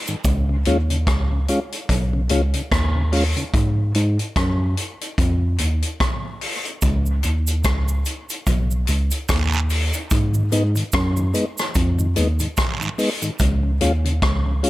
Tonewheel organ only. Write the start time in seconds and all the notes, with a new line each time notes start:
0.08 G#2 D#3
0.49 C#3
0.67 G#3 C#4 F4
0.90 C#3
1.32 C#3
1.49 G#3 C#4 F4
2.13 C#3
2.30 G#3 C#4 F4
2.54 C#3
2.95 C#3
3.12 G#3 C#4 F4
3.36 C#3
10.35 G#2 D#3
10.52 G#3 B3 D#4
10.76 G#2 D#3
11.17 G#2 D#3
11.34 G#3 B3 D#4
11.99 G#2 D#3
12.16 G#3 B3 D#4
12.40 G#2 D#3
12.81 G#2 D#3
12.98 G#3 B3 D#4
13.22 G#2 D#3
13.63 C#3
13.81 G#3 C#4 F4
14.05 C#3
14.46 C#3
14.63 G#3 C#4 F4